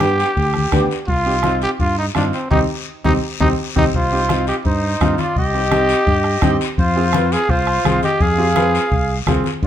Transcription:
Already playing: G2 G4
0.00 B3 D4 G4, bombo rim, high conga, short guiro
0.20 short guiro
0.36 D2, bombo low, high conga, long guiro
0.54 bombo rim, high conga
0.72 D2 B3 D4 G4, bombo low, bombo rim, high conga, short guiro
0.91 short guiro
1.08 C2 F4, bombo low, long guiro
1.26 C4 D#4 G4, high conga
1.43 C4 D#4 F4, bombo rim, high conga, short guiro
1.62 G4, short guiro
1.79 G2 F4, bombo low, high conga, long guiro
1.98 D#4
2.15 G2 C4 D4 D#4 F4, bombo rim, high conga, short guiro
2.33 C4, short guiro
2.51 C2 C4 D#4 G4, bombo low, high conga, long guiro
3.05 C2 C4 D#4 G4, bombo low, high conga, long guiro
3.40 C2 C4 D#4 G4, bombo low, high conga, long guiro
3.76 C2 C4 D#4 G4, bombo low, high conga, long guiro
3.94 C2 F4 C5, bombo low, long guiro
4.11 C4 D#4 G4, high conga
4.29 C4 D#4 F4, bombo rim, high conga, short guiro
4.47 G4 D#5, short guiro
4.65 G2 D#4 C5, bombo low, high conga, long guiro
5.01 G2 C4 D#4 F4, bombo low, bombo rim, high conga, short guiro
5.18 F4 D5, high conga, short guiro
5.36 C2 G4 D#5, bombo low, long guiro
5.54 C4 D#4 G4, high conga
5.71 C4 D#4 G4, bombo rim, high conga, short guiro
5.89 short guiro
6.07 G2, bombo low, high conga, long guiro
6.24 bombo rim
6.42 G2 C4 D#4 G4, bombo low, bombo rim, high conga, low conga, short guiro
6.61 short guiro
6.78 F2 F4 C5, bombo low, long guiro
6.96 C4 F4 G#4, high conga
7.13 C4 F4 B4, bombo rim, high conga, short guiro
7.32 G#4 F5, short guiro
7.49 C2 F4 C5, bombo low, high conga, long guiro
7.67 bombo rim
7.85 C2 C4 F4 G#4, bombo rim, high conga, short guiro
8.03 G4 D#5, high conga, short guiro
8.20 F2 G#4 F5, bombo low, long guiro
8.38 C4 F4 G4, high conga
8.56 C4 F4 B4, bombo rim, high conga, short guiro
8.75 short guiro
8.91 C2, bombo low, high conga, long guiro
9.27 C2 C4 F4 G#4, bombo low, bombo rim, high conga, low conga, short guiro
9.44 high conga, short guiro
9.63 G2, bombo low, long guiro

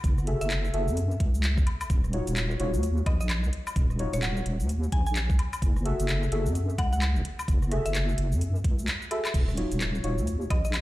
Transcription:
0.04 F#1, kick, closed hi-hat, shaker
0.18 cross-stick, shaker
0.27 F#4 G#4 A4 E5, closed hi-hat
0.41 F#1 E5, closed hi-hat, shaker
0.50 cross-stick, clap, closed hi-hat, shaker
0.65 shaker
0.74 F#1 F#4 G#4 A4 E5, closed hi-hat
0.88 F#2, shaker
0.97 closed hi-hat, shaker
1.11 shaker
1.20 C#2, kick, closed hi-hat
1.34 shaker
1.44 clap, closed hi-hat, shaker
1.58 E1, kick, shaker
1.67 closed hi-hat, high woodblock
1.81 closed hi-hat, high woodblock, shaker
1.90 D#1, kick, closed hi-hat, shaker
2.04 cross-stick, shaker
2.13 D#4 F4 F#4 C#5, closed hi-hat
2.27 D#1, closed hi-hat, shaker
2.36 cross-stick, clap, closed hi-hat, shaker
2.51 shaker
2.60 D#1 D#4 F4 F#4 C#5, closed hi-hat
2.74 D#2, shaker
2.83 closed hi-hat, shaker
2.97 shaker
3.06 A#1 D#5, kick, closed hi-hat, high woodblock
3.21 D#5, shaker
3.30 clap, closed hi-hat, high woodblock, shaker
3.44 C#2, shaker
3.53 closed hi-hat
3.67 high woodblock, shaker
3.76 D#1, kick, closed hi-hat, shaker
3.90 cross-stick, shaker
3.99 D#4 F4 F#4 C#5, closed hi-hat
4.13 D#1 C#5, closed hi-hat, shaker
4.23 F#5, cross-stick, clap, closed hi-hat, shaker
4.37 shaker
4.46 D#1, closed hi-hat
4.60 D#2, shaker
4.69 closed hi-hat, shaker
4.83 shaker
4.92 A#1 G#5, kick, closed hi-hat
5.06 G#5, shaker
5.16 clap, closed hi-hat, shaker
5.30 C#2, kick, shaker
5.39 closed hi-hat, high woodblock
5.53 closed hi-hat, high woodblock, shaker
5.62 F#1, kick, closed hi-hat, shaker
5.76 cross-stick, shaker
5.85 F#4 G#4 A4 E5, closed hi-hat
5.99 F#1, closed hi-hat, shaker
6.09 cross-stick, clap, closed hi-hat, shaker
6.23 shaker
6.32 F#1 F#4 G#4 A4 E5, closed hi-hat
6.46 F#2, shaker
6.55 closed hi-hat, shaker
6.69 shaker
6.78 C#2 F#5, kick, closed hi-hat, high woodblock
6.93 F#5, shaker
7.02 clap, closed hi-hat, high woodblock, shaker
7.16 E1, shaker
7.25 closed hi-hat
7.39 high woodblock, shaker
7.48 F#1, kick, closed hi-hat, shaker
7.62 cross-stick, shaker
7.71 F#4 G#4 A4 E5, cross-stick, closed hi-hat
7.86 F#1 E5, closed hi-hat, shaker
7.95 cross-stick, clap, closed hi-hat, shaker
8.09 shaker
8.18 F#1, closed hi-hat
8.32 F#2, shaker
8.41 closed hi-hat, shaker
8.55 shaker
8.64 C#2, kick, closed hi-hat
8.79 shaker
8.88 clap, closed hi-hat, shaker
9.02 shaker
9.11 F#4 G#4 A4 E5, closed hi-hat, high woodblock
9.25 clap, closed hi-hat, high woodblock, shaker
9.34 D#1, kick, closed hi-hat, crash, shaker
9.48 cross-stick, shaker
9.57 D#4 F4 F#4 C#5, closed hi-hat
9.72 D#1, closed hi-hat, shaker
9.81 cross-stick, clap, closed hi-hat, shaker
9.95 shaker
10.04 D#1 D#4 F4 F#4 C#5, closed hi-hat
10.18 D#2, shaker
10.27 closed hi-hat, shaker
10.41 shaker
10.50 A#1 D#5, kick, closed hi-hat, high woodblock
10.65 D#5, shaker
10.74 clap, closed hi-hat, high woodblock, shaker

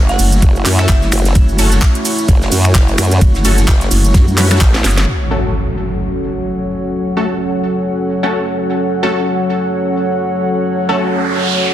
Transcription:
Already playing: F#1 A3 C#4 E4 F#4 C#5 E5
0.09 F#5, snare, closed hi-hat, shaker
0.19 F#1, closed hi-hat, open hi-hat, ride, shaker
0.32 closed hi-hat, shaker
0.42 F#1, kick, closed hi-hat, ride, shaker
0.56 shaker
0.65 F#2, clap, open hi-hat, ride, shaker
0.78 A3 C#4 F#4 A4 E5, finger snap, snare, shaker
0.89 F#1, kick, snare, clap, closed hi-hat, shaker
1.02 snare, shaker
1.12 F#1, finger snap, closed hi-hat, open hi-hat, ride, shaker
1.19 closed hi-hat
1.25 snare, closed hi-hat, shaker
1.35 F#1, kick, closed hi-hat, ride, shaker
1.49 shaker
1.59 A3 C#4 F#4 A4, closed hi-hat, open hi-hat, ride, shaker
1.72 snare, closed hi-hat, shaker
1.82 kick, snare, clap, closed hi-hat, shaker
1.95 closed hi-hat, shaker
2.05 closed hi-hat, open hi-hat, ride, shaker
2.18 closed hi-hat, shaker
2.29 F#1, kick, closed hi-hat, ride, shaker
2.42 snare, shaker
2.52 F#2, closed hi-hat, open hi-hat, ride, shaker
2.65 finger snap, closed hi-hat, shaker
2.75 F#1, kick, snare, clap, closed hi-hat, shaker
2.88 closed hi-hat, shaker
2.98 F#2, finger snap, closed hi-hat, open hi-hat, ride, shaker
3.05 closed hi-hat
3.11 closed hi-hat, shaker
3.21 F#1, kick, closed hi-hat, ride, shaker
3.35 snare, shaker
3.45 A3 C#4 F#4 A4, snare, closed hi-hat, open hi-hat, ride, shaker
3.58 snare, closed hi-hat, shaker
3.68 F#1, kick, snare, clap, shaker
3.81 snare, closed hi-hat, shaker
3.91 F#1, closed hi-hat, open hi-hat, ride, shaker
4.04 closed hi-hat, shaker
4.14 F#2, kick, snare, closed hi-hat, ride, shaker
4.28 shaker
4.38 A3 C#4 F#4 B4, snare, clap, closed hi-hat, open hi-hat, ride, shaker
4.44 snare, closed hi-hat
4.50 A3 C#4 F#4 A4, finger snap, snare, closed hi-hat, shaker
4.56 snare, closed hi-hat
4.61 A1, kick, snare, clap, closed hi-hat, shaker
4.74 snare, shaker
4.84 F#1, snare, closed hi-hat, open hi-hat, ride, shaker
4.91 closed hi-hat
4.97 snare, closed hi-hat, shaker
5.07 F#3 C#4 F#4 A4, impact
5.31 A3 C#4 F#4 A4
5.64 C#5
6.47 closed hi-hat
6.58 F#5
6.70 closed hi-hat
6.77 closed hi-hat
6.84 closed hi-hat
6.93 closed hi-hat
7.17 A3 C#4 F#4 A4
7.86 closed hi-hat
8.23 A3 C#4 F#4 A4
8.79 closed hi-hat
9.03 A3 C#4 F#4 A4
9.39 closed hi-hat
9.73 closed hi-hat
10.09 closed hi-hat
10.19 closed hi-hat
10.42 closed hi-hat
10.49 closed hi-hat
10.56 closed hi-hat
10.66 closed hi-hat, noise sweep
10.89 A3 C#4 F#4 A4
11.25 closed hi-hat

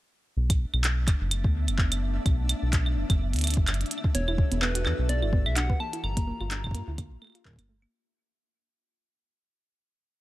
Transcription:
0.37 B1 A3 B3 D4 E5
0.50 kick, closed hi-hat, claves
0.74 B1, claves
0.84 clap, closed hi-hat
1.08 F#1, kick, clap, closed hi-hat, claves
1.21 F#1
1.31 closed hi-hat, claves
1.44 D2, kick
1.68 F#1, closed hi-hat, claves
1.78 kick, clap
1.92 closed hi-hat, claves
2.26 B1, kick, closed hi-hat, claves
2.49 closed hi-hat, claves
2.63 B1
2.73 kick, clap, closed hi-hat
2.86 claves
2.97 F#1
3.10 F#1, kick, closed hi-hat, claves
3.33 D2, closed hi-hat
3.36 closed hi-hat
3.39 closed hi-hat
3.41 closed hi-hat
3.44 closed hi-hat, claves
3.47 closed hi-hat, claves
3.50 closed hi-hat
3.54 F#1, kick, closed hi-hat
3.67 clap, closed hi-hat, claves
3.74 closed hi-hat
3.81 closed hi-hat
3.86 closed hi-hat
3.91 E3 F#4 G4 A4, closed hi-hat
3.98 claves
4.04 kick
4.15 E1 B3 C#5, closed hi-hat
4.28 E4, claves
4.38 kick
4.52 E1 B3, closed hi-hat
4.62 B3 B4, clap, claves
4.75 F#4, closed hi-hat
4.86 E2 D4, clap, claves
4.99 B1
5.09 B3 D5, closed hi-hat
5.22 G1 E4, claves
5.33 B3, kick
5.46 B1 E5, claves
5.56 D4 F#5, clap, closed hi-hat
5.70 B4, kick
5.80 A#3 F4 A5, claves
5.93 E4, closed hi-hat
6.04 G1 A#5, claves
6.17 A#3, kick, closed hi-hat
6.27 A#3
6.40 G1 F4, claves
6.51 D4, clap, closed hi-hat
6.64 kick, claves
6.67 kick
6.71 G2 A#3, kick, closed hi-hat
6.88 D2 E4
6.98 A#3, kick, closed hi-hat, claves
7.11 A#1
7.22 A3, claves
7.24 claves
7.35 F4, closed hi-hat
7.45 A#4, kick, clap
7.48 kick
7.51 kick
7.53 kick
7.56 G1 A#3, kick, closed hi-hat, claves
7.69 A3
7.82 A#3, claves

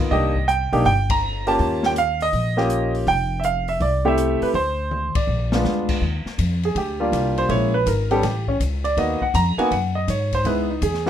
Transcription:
0.11 C2 A#3 D4 D#4 G4 D#5, kick
0.36 kick
0.48 G5, closed hi-hat
0.72 B1 A#3 D4 D#4 G4, open hi-hat
0.85 G1 G5, kick, open hi-hat
1.10 A#5, kick, ride
1.47 A#3 C#4 F4 G4 A5, open hi-hat
1.59 D#2, kick, open hi-hat
1.83 G5, snare
1.96 F5, closed hi-hat
2.21 D#5, open hi-hat
2.33 A#1, kick, open hi-hat
2.57 A#3 C#4 F4 G4, snare
2.70 closed hi-hat
2.95 open hi-hat
3.07 F1 G5, kick, open hi-hat
3.40 E5, closed hi-hat
3.45 F5
3.68 E5, open hi-hat
3.80 C2 D5, kick, open hi-hat
4.05 A3 C4 E4 G4 E5
4.18 closed hi-hat
4.41 B4, muted upright bass stroke, open hi-hat
4.54 D2 C5, kick, open hi-hat
4.91 mid tom
5.15 D5, muted upright bass stroke, kick, ride
5.27 A#1
5.52 G#3 B3 D4 F4, snare
5.64 D2, snare
5.89 kick, crash
6.01 D#2
6.26 muted upright bass stroke, snare
6.38 F2, kick, hi-hat pedal, ride
6.63 G#4, ride
6.75 D2 G4, kick, ride
7.00 G3 A#3 D4 F4
7.12 C2, kick, hi-hat pedal, ride
7.38 C5, ride
7.49 A#1 G#3 A#3 C#4 E4 C#5, kick, ride
7.74 B4
7.86 G#1 A#4, kick, hi-hat pedal, ride
8.11 G3 B3 C#4 G4 A4, ride
8.23 A1 G4, kick, snare, ride
8.48 C#4, kick
8.60 C#2, kick, hi-hat pedal, ride
8.84 D5, ride
8.97 D#2 A#3 B3 D#4 F#4 D#5, kick, ride
9.21 F#5, muted upright bass stroke, kick
9.34 F2 A#5, kick, hi-hat pedal, ride
9.58 A#3 B3 D#4 F#4 G#5, muted upright bass stroke, ride
9.71 F#2 F#5, kick, ride
9.95 D#5
10.08 G#2 C#5, kick, hi-hat pedal, ride
10.32 C5, kick, ride
10.45 C#2 G#3 B3 D#4 E4 B4, kick, ride
10.71 D#4
10.82 E2 G#4, kick, hi-hat pedal, ride
10.94 snare
11.06 G3 A#3 E4 F#4, snare

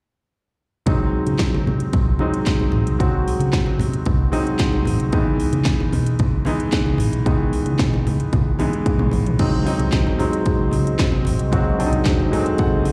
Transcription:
0.86 C#2 F#3 G#3 C4 D#4, kick, closed hi-hat
1.27 C#3, closed hi-hat, high conga
1.38 kick, snare, clap, closed hi-hat, muted conga
1.54 high conga
1.67 C3, low conga
1.80 closed hi-hat
1.93 C2, kick, closed hi-hat, muted conga, low conga
2.19 F#3 G#3 C4 D#4, muted conga, high conga
2.34 closed hi-hat
2.46 kick, snare, clap, closed hi-hat
2.60 C2, high conga
2.72 A1, muted conga, low conga
2.86 C2, closed hi-hat
2.99 C#2 F#3 G#3 C4 F#4, kick, closed hi-hat, muted conga
3.28 open hi-hat
3.40 C#3, closed hi-hat, high conga
3.52 kick, snare, clap, closed hi-hat, muted conga
3.66 high conga
3.79 C3, open hi-hat, muted conga, low conga
3.94 closed hi-hat
4.06 C2, kick, closed hi-hat, muted conga, low conga
4.32 F#3 G#3 C4 D#4, open hi-hat, high conga
4.47 closed hi-hat
4.59 kick, snare, clap, closed hi-hat
4.72 C2, high conga
4.85 A1, open hi-hat, muted conga, low conga
5.00 C2, closed hi-hat
5.12 C#2 D#3 G#3 B3 D#4, kick, closed hi-hat
5.18 E3
5.40 open hi-hat
5.52 C#3, closed hi-hat, high conga
5.64 kick, snare, clap, closed hi-hat, muted conga
5.80 high conga
5.92 B2, open hi-hat, muted conga, low conga
6.06 closed hi-hat
6.19 C#2, kick, closed hi-hat, muted conga, low conga
6.45 E3 G#3 B3 D#4, open hi-hat, muted conga, high conga
6.60 closed hi-hat
6.72 kick, snare, clap, closed hi-hat
6.85 C#2, high conga
6.98 A1, open hi-hat, muted conga, low conga
7.12 B1, closed hi-hat
7.25 C#2 D#3 G#3 B3 D#4, kick, closed hi-hat
7.32 E3
7.53 open hi-hat
7.65 C#3, closed hi-hat, high conga
7.79 B2, kick, snare, clap, closed hi-hat
7.94 high conga
8.06 C#2, open hi-hat, low conga
8.20 closed hi-hat
8.33 C#2, kick, closed hi-hat, high tom, muted conga, low conga
8.59 E3 G#3 B3 D#4, open hi-hat, mid tom, high conga
8.73 closed hi-hat
8.86 kick, closed hi-hat, mid tom
8.98 B1, mid tom, high conga
9.11 A1, floor tom, open hi-hat, muted conga, low conga
9.26 B1, closed hi-hat, floor tom
9.39 C#2 F#3 G#3 C4 D#4 F#4 G#4 D#5, kick, closed hi-hat, crash, muted conga
9.65 F#3 G#3 C4 D#4, open hi-hat
9.79 C2, closed hi-hat, high conga
9.92 D#2, kick, snare, clap, closed hi-hat
10.07 high conga
10.18 F#3 G#3 C4 D#4, open hi-hat, low conga
10.33 closed hi-hat
10.46 kick, closed hi-hat, muted conga
10.59 C#2
10.71 C#3, open hi-hat, high conga
10.87 closed hi-hat
10.99 kick, snare, clap, closed hi-hat, muted conga
11.12 C3, high conga
11.25 A1, open hi-hat, muted conga, low conga
11.39 C2, closed hi-hat
11.52 C#2 F#3 G#3 C4 F#4, kick, closed hi-hat, muted conga
11.79 F#3 G#3 C4 D4, open hi-hat, muted conga
11.86 D#4
11.92 C2, closed hi-hat, high conga
12.05 D#2, kick, snare, clap, closed hi-hat, muted conga
12.20 high conga
12.31 F#3 G#3 A3 D#4 G#5, open hi-hat, muted conga, low conga
12.39 C4
12.46 closed hi-hat
12.58 F#5, kick, closed hi-hat, muted conga
12.72 C#2
12.85 C#3, open hi-hat, muted conga, high conga

